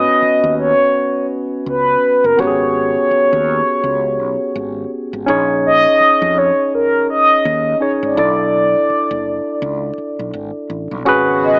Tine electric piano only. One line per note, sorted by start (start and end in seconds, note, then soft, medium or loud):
0.00 2.34 B3 medium
0.00 2.34 C#4 medium
0.00 2.35 F#4 medium
0.00 2.35 B4 medium
2.37 5.23 B3 medium
2.37 5.23 C#4 medium
2.37 5.24 F#4 soft
2.37 2.47 G4 soft
2.47 5.28 G#4 medium
5.26 7.76 C#4 medium
5.26 7.77 D#4 medium
5.26 7.77 G#4 medium
5.26 7.78 C#5 medium
7.80 8.16 C#4 soft
7.80 8.17 D#4 soft
7.80 8.17 G#4 soft
7.80 8.17 C#5 soft
8.16 11.01 D4 medium
8.16 11.02 E4 medium
8.16 11.02 A4 soft
8.16 11.03 D5 medium
11.05 11.59 C#4 medium
11.05 11.59 F#4 medium
11.05 11.59 G#4 medium
11.05 11.59 B4 medium